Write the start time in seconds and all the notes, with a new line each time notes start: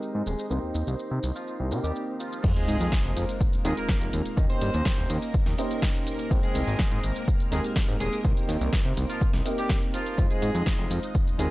Already playing: G#3 C4 D#4 G4 A#4 C5
0.02 shaker
0.15 G#2
0.26 D#1 G#3 G#4, shaker
0.39 shaker
0.50 C2 A#3 C4 D#4 G4 C5, shaker
0.63 D#2
0.75 D#2, shaker
0.87 C2, shaker
0.99 shaker
1.11 C3
1.23 C2, shaker
1.36 F3 F4, shaker
1.48 shaker
1.60 C2
1.71 C3 A#3 C4 D#4 G4 A#4, shaker
1.84 D#2 G3 G4, shaker
1.96 shaker
2.20 F3 F4, shaker
2.32 shaker
2.43 F2 G#3 A#3 C4 D#4 F4 A#4 C5, kick, crash, sub drop, shaker
2.56 G#3 G#4, closed hi-hat, shaker
2.68 G#2, open hi-hat, shaker
2.81 F2, closed hi-hat, shaker
2.92 kick, snare, shaker
3.05 F1, closed hi-hat
3.17 F2, open hi-hat, shaker
3.29 closed hi-hat, shaker
3.41 kick, shaker
3.53 D#2, closed hi-hat, shaker
3.64 D#2 G#3 C4 D#4 F4 G#4 A#4, open hi-hat, shaker
3.77 A#3 A#4, closed hi-hat, shaker
3.89 kick, snare, shaker
4.01 F1, closed hi-hat, shaker
4.13 D#2, open hi-hat, shaker
4.25 closed hi-hat, shaker
4.36 D#2 A#3 C#4 D#4 G4 D#5, kick, shaker
4.50 G2 C4 C5, closed hi-hat, shaker
4.61 G2, open hi-hat, shaker
4.74 D#2, closed hi-hat, shaker
4.85 kick, snare, shaker
4.98 D#1, closed hi-hat
5.10 D#2, open hi-hat, shaker
5.22 closed hi-hat, shaker
5.34 kick, shaker
5.46 D#2, snare, closed hi-hat, shaker
5.58 A#3 C#4 D#4 G4 C5, open hi-hat, shaker
5.71 closed hi-hat, shaker
5.82 kick, snare, shaker
5.95 closed hi-hat, shaker
6.07 open hi-hat, shaker
6.19 closed hi-hat, shaker
6.30 G#1 G#3 C4 D#4 C5 G5, kick, shaker
6.43 G#3 G#4, closed hi-hat, shaker
6.55 C2, open hi-hat, shaker
6.67 G#1, closed hi-hat, shaker
6.79 kick, snare, shaker
6.91 G#2, closed hi-hat
7.03 G#1, open hi-hat, shaker
7.16 closed hi-hat, shaker
7.28 kick, shaker
7.40 D#2, closed hi-hat, shaker
7.51 D#2 G#3 C4 D#4 G4 G#4 A#4, open hi-hat, shaker
7.64 closed hi-hat, shaker
7.76 kick, snare, shaker
7.88 G#2, closed hi-hat, shaker
8.00 D#1 G#3 G#4, open hi-hat, shaker
8.13 closed hi-hat, shaker
8.24 C2 A#3 C4 D#4 G4 C5, kick, shaker
8.37 D#2, closed hi-hat, shaker
8.49 D#2, open hi-hat, shaker
8.61 C2, closed hi-hat, shaker
8.73 kick, snare, shaker
8.85 C3, closed hi-hat
8.97 C2, open hi-hat, shaker
9.09 F3 F4, closed hi-hat, shaker
9.21 kick, shaker
9.33 C2, snare, closed hi-hat, shaker
9.45 A#3 C4 D#4 G4 A#4, open hi-hat, shaker
9.58 G3 G4, closed hi-hat, shaker
9.69 kick, snare, shaker
9.82 closed hi-hat, shaker
9.94 F3 F4, open hi-hat, shaker
10.06 closed hi-hat, shaker
10.18 F2 G#3 C4 D#4 F4 C5 D#5, kick, shaker
10.30 G#3 G#4, closed hi-hat, shaker
10.42 G#2, open hi-hat, shaker
10.55 F2, closed hi-hat, shaker
10.66 kick, snare, shaker
10.79 F1, closed hi-hat
10.91 F2, open hi-hat, shaker
11.03 closed hi-hat, shaker
11.15 kick, shaker
11.27 D#2, closed hi-hat, shaker
11.38 D#2 G#3 C4 D#4 F4 G#4 A#4, open hi-hat, shaker